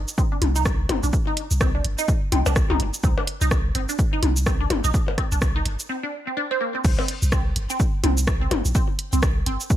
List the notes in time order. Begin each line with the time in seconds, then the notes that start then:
0.08 shaker
0.18 C4, kick, shaker
0.32 D4
0.42 C2, closed hi-hat, mid tom
0.56 D#4, shaker
0.65 kick, cross-stick, shaker
0.89 G1 C4, closed hi-hat, mid tom, percussion blips
1.03 A#1 D4, shaker
1.13 kick, shaker
1.27 D#4
1.37 closed hi-hat
1.51 C2, shaker
1.61 C4, kick, cross-stick, shaker
1.75 D4
1.85 G1, closed hi-hat
1.99 D#4, shaker
2.08 kick, shaker
2.32 C2 C4, closed hi-hat, mid tom
2.46 C2 D4, percussion blips, shaker
2.56 kick, cross-stick, shaker
2.70 C2 D#4, mid tom
2.80 G1, closed hi-hat
2.94 shaker
3.04 C2 C4, kick, shaker
3.18 D4, percussion blips
3.27 closed hi-hat
3.41 C2 D#4, shaker
3.51 kick, cross-stick, shaker
3.75 G1 C4, closed hi-hat
3.89 D4, shaker
3.99 kick, shaker
4.13 D#4
4.23 C2, closed hi-hat, mid tom
4.37 shaker
4.46 C4, kick, cross-stick, shaker
4.61 D4
4.70 G1, closed hi-hat, mid tom, percussion blips
4.84 A#1 D#4, shaker
4.94 kick, shaker
5.08 percussion blips
5.18 C4, kick, cross-stick, closed hi-hat
5.32 C2 D4, shaker
5.42 kick, cross-stick, shaker
5.56 D#4
5.66 G1, closed hi-hat
5.80 shaker
5.89 C4
6.03 D4
6.27 C4
6.37 D4
6.51 C4
6.61 A#3
6.75 C4
6.85 C2, kick, crash, shaker
6.99 C4, percussion blips
7.08 closed hi-hat
7.22 C2, shaker
7.32 C4, kick, cross-stick, shaker
7.56 G1, closed hi-hat
7.70 C4, shaker
7.80 kick, shaker
8.04 C2 C4, closed hi-hat, mid tom
8.18 shaker
8.27 kick, cross-stick, shaker
8.41 C4
8.51 G1, closed hi-hat, mid tom, percussion blips
8.65 A#1, shaker
8.75 C4, kick, shaker
8.99 closed hi-hat
9.13 C2 C4, shaker
9.23 kick, cross-stick, shaker
9.46 G1 C4, closed hi-hat
9.60 shaker
9.70 kick, shaker